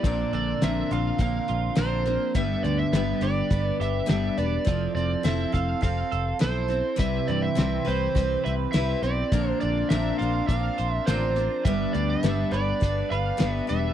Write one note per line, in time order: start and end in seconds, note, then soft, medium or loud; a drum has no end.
0.00 0.23 A#1 loud
0.00 0.34 D5 medium
0.04 0.61 A#2 medium
0.04 0.61 D3 medium
0.04 0.62 F3 medium
0.04 0.62 C4 medium
0.04 0.63 D4 medium
0.04 0.62 A#4 medium
0.04 kick loud
0.04 closed hi-hat medium
0.33 0.52 A#1 medium
0.33 1.77 D3 medium
0.33 0.64 D5 medium
0.33 closed hi-hat medium
0.62 0.82 A#1 medium
0.62 0.91 A#2 medium
0.62 0.91 D3 medium
0.62 0.91 F3 medium
0.62 1.20 A#3 medium
0.62 0.91 C4 medium
0.62 0.91 D4 medium
0.62 0.90 A#4 medium
0.62 0.89 E5 loud
0.62 snare loud
0.62 closed hi-hat medium
0.91 1.10 A#1 medium
0.91 1.19 F3 soft
0.91 1.20 C4 medium
0.91 1.19 D4 medium
0.91 1.48 F4 medium
0.91 1.20 A#4 medium
0.91 1.19 F5 medium
0.91 closed hi-hat medium
1.18 1.39 A#1 medium
1.18 1.74 F3 medium
1.18 2.06 A#3 medium
1.18 1.76 C4 medium
1.18 1.76 D4 medium
1.18 1.76 A#4 medium
1.18 1.80 F5 medium
1.18 kick loud
1.18 closed hi-hat medium
1.48 1.69 A#1 medium
1.48 2.35 F4 medium
1.48 closed hi-hat medium
1.75 2.16 A#1 medium
1.75 2.05 A#2 medium
1.75 2.06 D3 medium
1.75 2.05 F3 medium
1.75 2.06 C4 medium
1.75 2.05 D4 medium
1.75 2.05 A#4 medium
1.75 2.32 C5 medium
1.75 snare loud
1.75 closed hi-hat medium
2.06 2.36 F3 soft
2.06 2.36 A#3 medium
2.06 2.36 C4 soft
2.06 2.35 D4 soft
2.06 2.35 A#4 soft
2.06 closed hi-hat medium
2.35 2.55 G1 medium
2.35 2.93 G2 medium
2.35 2.93 D3 medium
2.35 2.93 G3 medium
2.35 2.94 B3 medium
2.35 2.94 D4 medium
2.35 2.94 B4 medium
2.35 2.63 E5 medium
2.35 kick loud
2.35 closed hi-hat medium
2.63 2.83 D2 medium
2.63 4.10 D3 medium
2.63 2.79 D5 medium
2.63 closed hi-hat medium
2.79 3.23 E5 loud
2.93 3.12 G1 medium
2.93 3.23 G2 medium
2.93 3.23 D3 medium
2.93 3.23 G3 medium
2.93 3.22 B3 medium
2.93 3.21 D4 medium
2.93 snare loud
2.93 closed hi-hat medium
2.97 3.20 B4 medium
3.21 3.41 G1 medium
3.21 3.50 G3 soft
3.21 3.51 B3 soft
3.21 3.51 D4 medium
3.21 3.79 G4 medium
3.21 3.51 B4 medium
3.21 3.76 D5 medium
3.21 closed hi-hat medium
3.50 3.70 G1 medium
3.50 4.06 G3 medium
3.50 4.06 B3 medium
3.50 4.07 D4 medium
3.50 4.07 B4 medium
3.50 kick loud
3.50 closed hi-hat medium
3.80 4.00 G1 medium
3.80 4.67 G4 medium
3.80 4.08 E5 medium
3.80 snare soft
3.80 closed hi-hat medium
4.06 4.29 G1 medium
4.06 4.36 G2 medium
4.06 4.36 D3 medium
4.06 4.37 G3 medium
4.06 4.37 B3 medium
4.06 4.37 D4 medium
4.06 4.36 B4 medium
4.06 4.36 E5 medium
4.06 snare loud
4.06 closed hi-hat medium
4.38 4.57 E1 medium
4.38 4.64 G3 soft
4.38 4.64 B3 soft
4.38 4.66 D4 soft
4.38 4.67 B4 soft
4.38 4.94 D5 medium
4.38 closed hi-hat medium
4.65 4.86 F1 medium
4.65 5.23 F3 medium
4.65 5.23 C4 medium
4.65 5.24 E4 medium
4.65 5.24 A4 medium
4.65 kick loud
4.65 closed hi-hat medium
4.95 5.14 F1 medium
4.95 5.25 C4 medium
4.95 5.23 D5 medium
4.95 closed hi-hat medium
5.23 5.44 F1 medium
5.23 5.54 F3 medium
5.23 5.53 C4 medium
5.23 5.52 E4 medium
5.23 5.51 A4 medium
5.23 5.54 E5 medium
5.23 snare loud
5.23 closed hi-hat medium
5.52 5.73 F1 medium
5.52 5.81 C4 soft
5.52 5.83 E4 medium
5.52 5.82 A4 soft
5.52 5.81 F5 medium
5.52 kick medium
5.52 closed hi-hat medium
5.81 6.02 F1 medium
5.81 6.38 F3 medium
5.81 6.39 C4 medium
5.81 6.39 A4 medium
5.81 6.37 F5 medium
5.81 kick loud
5.81 closed hi-hat medium
6.11 6.32 F1 medium
6.11 6.99 A4 medium
6.11 closed hi-hat medium
6.39 6.81 B1 medium
6.39 6.69 F3 medium
6.39 6.69 C4 medium
6.39 6.68 E4 medium
6.39 6.67 A4 medium
6.39 6.96 C5 medium
6.39 snare loud
6.39 closed hi-hat medium
6.68 6.96 C4 soft
6.68 6.96 E4 soft
6.68 6.97 A4 soft
6.68 closed hi-hat medium
6.96 7.18 C2 medium
6.96 7.54 C3 medium
6.96 7.55 G3 medium
6.96 7.56 C4 medium
6.96 7.56 E4 medium
6.96 7.56 B4 medium
6.96 7.29 E5 medium
6.96 kick loud
6.96 closed hi-hat medium
7.02 9.31 C4 medium
7.02 9.31 E4 medium
7.02 9.31 G4 medium
7.28 7.48 G2 medium
7.28 8.75 E3 medium
7.28 7.43 D5 medium
7.28 closed hi-hat medium
7.42 7.88 E5 medium
7.55 7.77 C2 medium
7.55 7.86 C3 medium
7.55 7.86 G3 medium
7.55 7.86 C4 medium
7.55 7.85 E4 medium
7.55 7.83 B4 medium
7.55 snare loud
7.55 closed hi-hat medium
7.85 8.07 C2 medium
7.85 8.15 C4 soft
7.85 8.16 E4 soft
7.85 8.15 B4 medium
7.85 8.41 C5 medium
7.85 closed hi-hat medium
8.15 8.35 C2 medium
8.15 8.73 G3 medium
8.15 8.73 C4 medium
8.15 8.74 E4 medium
8.15 8.74 B4 medium
8.15 kick loud
8.15 closed hi-hat medium
8.44 8.65 C2 medium
8.44 9.32 B4 medium
8.44 8.53 E5 medium
8.44 snare soft
8.44 closed hi-hat medium
8.72 8.94 C2 medium
8.72 9.03 C3 medium
8.72 9.03 G3 medium
8.72 9.03 C4 medium
8.72 9.03 E4 medium
8.72 9.02 B4 medium
8.72 9.00 E5 medium
8.72 snare loud
8.72 closed hi-hat medium
9.03 9.22 B1 medium
9.03 9.32 C4 soft
9.03 9.33 E4 soft
9.03 9.32 B4 medium
9.03 9.50 D5 medium
9.03 closed hi-hat medium
9.32 9.52 A#1 loud
9.32 9.89 A#2 medium
9.32 9.90 D3 medium
9.32 9.91 F3 medium
9.32 10.78 A#3 medium
9.32 11.63 C4 medium
9.32 9.90 C4 medium
9.32 11.63 D4 medium
9.32 9.91 D4 medium
9.32 11.64 F4 medium
9.32 11.64 A#4 medium
9.32 9.91 A#4 medium
9.32 kick loud
9.32 closed hi-hat medium
9.50 9.60 C5 medium
9.61 9.82 A#1 medium
9.61 9.89 D4 medium
9.61 9.91 D5 medium
9.61 closed hi-hat medium
9.89 10.11 A#1 medium
9.89 10.20 A#2 medium
9.89 10.20 D3 medium
9.89 10.21 F3 medium
9.89 10.20 C4 medium
9.89 10.21 D4 medium
9.89 10.21 A#4 medium
9.89 10.18 E5 medium
9.89 snare medium
9.89 closed hi-hat medium
10.18 10.40 A#1 medium
10.18 10.50 D4 medium
10.18 10.50 A#4 soft
10.18 10.77 C5 medium
10.18 10.47 F5 medium
10.18 closed hi-hat soft
10.23 10.48 F3 soft
10.23 10.49 C4 soft
10.48 10.68 A#1 medium
10.48 11.07 F3 medium
10.48 11.08 C4 medium
10.48 11.09 D4 medium
10.48 10.92 F5 loud
10.48 kick loud
10.48 closed hi-hat medium
10.52 11.08 A#4 medium
10.78 10.99 A#1 medium
10.78 11.66 C5 medium
10.78 closed hi-hat medium
10.92 11.09 E5 loud
11.06 11.47 A1 medium
11.06 11.37 A#2 medium
11.06 11.37 D3 medium
11.06 11.37 F3 medium
11.06 11.37 C4 medium
11.06 11.36 D4 medium
11.06 11.66 F4 medium
11.06 11.37 A#4 medium
11.06 11.67 C5 medium
11.06 snare loud
11.06 closed hi-hat medium
11.36 11.66 F3 soft
11.36 11.67 C4 soft
11.36 11.66 D4 soft
11.36 11.67 A#4 soft
11.36 closed hi-hat medium
11.64 11.85 G1 loud
11.64 12.22 G2 medium
11.64 12.23 D3 medium
11.64 12.23 G3 medium
11.64 13.94 B3 medium
11.64 12.23 B3 medium
11.64 13.94 D4 medium
11.64 12.24 D4 medium
11.64 13.94 G4 medium
11.64 13.94 B4 medium
11.64 12.25 B4 medium
11.64 11.92 E5 medium
11.64 kick loud
11.64 closed hi-hat medium
11.93 12.14 D2 loud
11.93 12.23 D4 medium
11.93 12.09 D5 medium
11.93 closed hi-hat medium
12.10 12.55 E5 medium
12.23 12.43 G1 medium
12.23 12.53 G2 medium
12.23 12.53 D3 medium
12.23 12.53 G3 medium
12.23 12.53 B3 loud
12.23 12.52 D4 medium
12.23 12.50 B4 medium
12.23 snare loud
12.23 closed hi-hat medium
12.51 12.72 G1 medium
12.51 12.79 G3 soft
12.51 12.80 B3 medium
12.51 12.80 D4 soft
12.51 12.81 B4 medium
12.51 13.13 D5 medium
12.51 closed hi-hat medium
12.80 13.02 G1 medium
12.80 13.37 G3 medium
12.80 13.37 B3 medium
12.80 13.37 D4 medium
12.80 13.38 B4 medium
12.80 kick loud
12.80 closed hi-hat medium
13.10 13.31 G1 medium
13.10 13.94 B4 medium
13.10 13.50 F5 medium
13.10 snare soft
13.10 closed hi-hat medium
13.37 13.60 G1 medium
13.37 13.68 G2 medium
13.37 13.69 D3 medium
13.37 13.68 G3 medium
13.37 13.68 B3 medium
13.37 13.67 D4 medium
13.37 13.66 B4 medium
13.37 snare loud
13.37 closed hi-hat medium
13.50 13.65 E5 medium
13.67 13.90 E1 medium
13.67 13.94 G3 soft
13.67 13.94 B3 soft
13.67 13.94 D4 soft
13.67 13.94 B4 medium
13.67 13.94 E5 medium
13.67 closed hi-hat medium